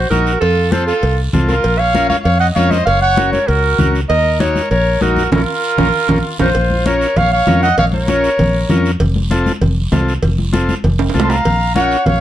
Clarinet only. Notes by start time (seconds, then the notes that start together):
0.10 A#4
0.40 A4
0.72 C5
0.87 A4
1.48 A#4
1.79 F5
2.09 F5
2.24 F5
2.40 F#5
2.55 F5
2.71 D#5
2.85 F5
3.02 F#5
3.32 C#5
3.48 A#4
4.09 D#5
4.40 C#5
4.71 C#5
5.02 A#4
5.32 A#4
6.40 C5
6.86 C#5
7.17 F5
7.32 F5
7.63 F#5
7.79 F5
7.94 C#5
11.23 C6
11.30 A#5
11.76 F#5
12.06 F5